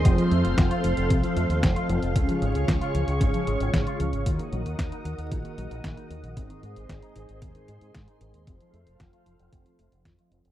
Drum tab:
HH |xxxxxxxxxxxxxxxx|xxxxxxxxxxxxxxxx|xxxxxxxxxxxxxxxx|xxxxxxxxxxxxxxxx|
SD |----o-------o---|----o-------o---|----o-------o---|----o-------o---|
BD |o---o---o---o---|o---o---o---o---|o---o---o---o---|o---o---o---o---|

HH |xxxxxxxxxxxxxxxx|
SD |----o-------o---|
BD |o---o---o---o---|